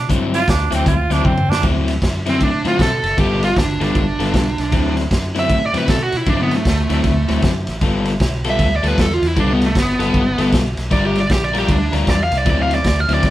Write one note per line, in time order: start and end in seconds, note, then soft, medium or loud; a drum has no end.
0.09 0.45 G2 loud
0.09 0.38 D3 medium
0.09 0.38 F#3 medium
0.09 0.38 C4 loud
0.09 0.38 E4 loud
0.09 kick medium
0.09 snare soft
0.09 closed hi-hat medium
0.34 0.51 F4 loud
0.34 snare soft
0.34 closed hi-hat medium
0.48 0.71 D2 medium
0.48 0.76 D4 medium
0.48 kick medium
0.48 snare loud
0.48 closed hi-hat medium
0.71 0.85 D2 loud
0.71 0.94 D3 medium
0.71 0.94 F#3 medium
0.71 0.93 C4 loud
0.71 0.87 C4 medium
0.71 0.93 E4 loud
0.71 snare soft
0.71 closed hi-hat medium
0.86 1.09 D2 medium
0.86 1.14 F4 medium
0.86 kick medium
0.86 closed hi-hat medium
1.10 1.23 D2 loud
1.10 1.33 D3 medium
1.10 1.32 F#3 medium
1.10 1.32 C4 medium
1.10 1.26 D4 medium
1.10 1.32 E4 medium
1.10 snare soft
1.10 closed hi-hat soft
1.25 1.48 F#2 loud
1.25 1.51 C4 medium
1.25 kick medium
1.25 high tom medium
1.38 mid tom medium
1.48 1.62 F#2 medium
1.48 1.63 D4 loud
1.48 snare loud
1.63 1.99 D2 loud
1.63 1.92 D3 medium
1.63 1.92 F#3 medium
1.63 1.92 C4 medium
1.63 1.92 E4 medium
1.63 kick medium
1.63 ride medium
1.88 snare soft
1.88 ride medium
2.02 2.38 F#2 medium
2.02 kick medium
2.02 snare medium
2.02 ride medium
2.26 2.48 D3 medium
2.26 2.48 F#3 medium
2.26 2.48 C4 medium
2.26 2.42 C4 medium
2.26 2.48 E4 medium
2.26 snare soft
2.26 ride medium
2.40 2.63 A2 medium
2.40 2.65 D4 medium
2.40 kick medium
2.40 ride medium
2.65 2.78 A2 medium
2.65 2.87 D3 medium
2.65 2.87 F#3 medium
2.65 2.86 C4 medium
2.65 2.86 E4 medium
2.65 2.80 F4 medium
2.65 snare soft
2.65 ride medium
2.79 3.02 B2 loud
2.79 3.18 A4 medium
2.79 kick medium
2.79 snare loud
2.79 ride medium
3.03 3.17 F#1 medium
3.03 snare soft
3.03 ride medium
3.17 3.54 G1 medium
3.17 3.46 G3 medium
3.17 3.46 B3 medium
3.17 3.47 F4 loud
3.17 3.43 G4 medium
3.17 3.47 A4 loud
3.17 kick medium
3.17 ride medium
3.43 3.57 F4 medium
3.43 snare soft
3.43 ride medium
3.56 3.79 G1 loud
3.56 3.81 D4 medium
3.56 kick medium
3.56 snare loud
3.56 ride medium
3.81 3.94 G1 loud
3.81 4.03 G3 medium
3.81 4.03 B3 medium
3.81 4.94 D4 medium
3.81 4.03 F4 medium
3.81 4.02 A4 medium
3.81 snare soft
3.81 ride medium
3.95 4.18 G1 medium
3.95 kick medium
3.95 ride medium
4.19 4.33 G1 medium
4.19 4.41 G3 medium
4.19 4.41 B3 medium
4.19 4.41 F4 medium
4.19 4.41 A4 medium
4.19 snare soft
4.19 ride medium
4.34 4.57 B1 medium
4.34 kick medium
4.34 snare loud
4.34 ride medium
4.58 4.71 B1 medium
4.58 snare soft
4.58 ride medium
4.72 5.09 D2 medium
4.72 5.01 D3 medium
4.72 5.01 F#3 medium
4.72 5.01 C4 loud
4.72 5.01 E4 medium
4.72 kick medium
4.72 snare soft
4.72 ride medium
4.97 snare soft
4.97 ride medium
5.11 5.47 F#2 loud
5.11 kick medium
5.11 snare loud
5.11 ride medium
5.35 5.57 D3 medium
5.35 5.57 F#3 medium
5.35 5.57 C4 medium
5.35 5.57 E4 medium
5.35 snare soft
5.35 ride medium
5.39 5.63 E5 medium
5.49 5.73 A2 medium
5.49 kick medium
5.49 ride medium
5.66 5.77 D5 medium
5.74 5.88 A2 loud
5.74 5.96 D3 medium
5.74 5.96 F#3 medium
5.74 5.95 C4 medium
5.74 5.95 E4 medium
5.74 5.89 B4 medium
5.74 snare soft
5.74 ride medium
5.88 6.11 B2 loud
5.88 6.02 A4 medium
5.88 kick medium
5.88 snare loud
5.88 ride medium
6.03 6.17 F#4 medium
6.12 6.26 B2 medium
6.12 snare soft
6.12 ride medium
6.17 6.28 E4 medium
6.26 6.63 G2 medium
6.26 6.55 D3 medium
6.26 6.56 F#3 medium
6.26 6.56 C4 medium
6.26 6.40 D4 medium
6.26 6.56 E4 loud
6.26 kick medium
6.26 ride medium
6.42 6.54 B3 medium
6.51 snare soft
6.51 ride medium
6.56 6.67 A3 medium
6.65 6.88 D2 medium
6.65 7.42 A3 loud
6.65 kick medium
6.65 snare loud
6.65 ride medium
6.90 7.03 D2 medium
6.90 7.12 D3 medium
6.90 7.12 F#3 medium
6.90 7.12 C4 medium
6.90 7.11 E4 loud
6.90 snare soft
6.90 ride medium
7.03 7.27 D2 medium
7.03 kick medium
7.03 snare soft
7.03 ride medium
7.28 7.42 D2 medium
7.28 7.51 D3 medium
7.28 7.51 F#3 medium
7.28 7.50 C4 medium
7.28 7.50 E4 medium
7.28 snare soft
7.28 ride medium
7.42 7.66 F#2 loud
7.42 kick medium
7.42 snare medium
7.42 ride medium
7.67 7.81 A1 medium
7.67 snare soft
7.67 ride medium
7.81 8.18 G1 medium
7.81 8.10 G3 medium
7.81 8.11 B3 medium
7.81 8.11 F4 medium
7.81 8.11 A4 medium
7.81 kick medium
7.81 snare soft
7.81 ride medium
8.05 snare soft
8.05 ride medium
8.20 8.56 B1 medium
8.20 kick medium
8.20 snare loud
8.20 ride medium
8.44 8.67 G3 medium
8.44 8.67 B3 medium
8.44 8.67 F4 medium
8.44 8.67 A4 loud
8.44 snare soft
8.44 ride medium
8.50 8.73 E5 medium
8.59 8.82 D2 medium
8.59 kick medium
8.59 snare soft
8.59 ride medium
8.76 8.88 D5 medium
8.83 8.97 D2 loud
8.83 9.06 G3 medium
8.83 9.05 B3 medium
8.83 9.05 F4 medium
8.83 9.05 A4 medium
8.83 snare soft
8.83 ride medium
8.88 8.99 B4 medium
8.98 9.21 E2 loud
8.98 9.12 A4 medium
8.98 kick medium
8.98 snare loud
8.98 ride medium
9.13 9.27 F4 medium
9.22 9.35 E2 medium
9.22 snare soft
9.22 ride medium
9.27 9.38 E4 medium
9.36 9.73 C2 loud
9.36 9.65 G3 medium
9.36 9.65 B3 medium
9.36 9.53 D4 medium
9.36 9.66 F4 medium
9.36 9.66 A4 medium
9.36 kick medium
9.36 ride medium
9.53 9.64 B3 medium
9.62 snare soft
9.62 ride medium
9.66 9.79 A3 medium
9.75 9.98 G1 medium
9.75 10.52 B3 medium
9.75 kick medium
9.75 snare loud
9.75 ride medium
9.99 10.13 G1 loud
9.99 10.22 G3 medium
9.99 10.21 B3 medium
9.99 10.21 F4 medium
9.99 10.21 A4 medium
9.99 snare soft
9.99 ride medium
10.14 10.37 G1 medium
10.14 kick medium
10.14 ride medium
10.38 10.52 G1 medium
10.38 10.61 G3 medium
10.38 10.60 B3 medium
10.38 10.60 F4 medium
10.38 10.60 A4 medium
10.38 snare soft
10.38 ride medium
10.52 10.76 B1 loud
10.52 kick medium
10.52 snare loud
10.52 ride medium
10.77 10.90 B1 medium
10.77 snare soft
10.77 ride medium
10.91 11.27 G1 loud
10.91 11.20 G3 medium
10.91 11.20 D4 medium
10.91 11.20 F4 medium
10.91 11.20 A#4 loud
10.91 11.05 D5 loud
10.91 kick medium
10.91 snare soft
10.91 ride medium
11.05 11.17 G4 loud
11.15 snare soft
11.15 ride medium
11.20 11.31 D5 medium
11.30 11.66 A#1 loud
11.30 11.43 G4 loud
11.30 kick medium
11.30 snare loud
11.30 ride medium
11.44 11.56 D5 medium
11.54 11.76 G3 medium
11.54 11.76 D4 medium
11.54 11.76 F4 medium
11.54 11.76 A#4 loud
11.54 snare soft
11.54 ride medium
11.59 11.70 G4 medium
11.69 11.91 D2 medium
11.69 11.94 D4 loud
11.69 kick medium
11.69 ride medium
11.93 12.06 D2 medium
11.93 12.15 G3 medium
11.93 12.15 D4 loud
11.93 12.15 F4 medium
11.93 12.14 A#4 loud
11.93 snare soft
11.93 ride medium
12.07 12.21 D5 loud
12.07 kick medium
12.07 snare loud
12.07 ride medium
12.24 12.38 F5 medium
12.31 12.45 C2 medium
12.31 snare soft
12.31 ride medium
12.38 12.48 D5 medium
12.45 12.82 D2 medium
12.45 12.74 D3 medium
12.45 12.75 F#3 medium
12.45 12.75 C4 loud
12.45 12.75 E4 loud
12.45 kick medium
12.45 snare soft
12.45 ride medium
12.50 12.61 D5 loud
12.62 12.73 F5 medium
12.71 12.86 D5 medium
12.71 snare soft
12.71 ride medium
12.84 13.07 D2 loud
12.84 13.00 D5 medium
12.84 kick medium
12.84 snare loud
12.84 ride medium
13.00 13.11 F5 medium
13.09 13.22 D2 loud
13.09 13.30 D3 medium
13.09 13.30 F#3 medium
13.09 13.30 C4 medium
13.09 13.30 E4 medium
13.09 snare soft
13.09 ride medium
13.14 13.25 D5 medium
13.23 13.30 D2 medium
13.23 13.30 D5 loud
13.23 kick medium
13.23 snare soft
13.23 ride medium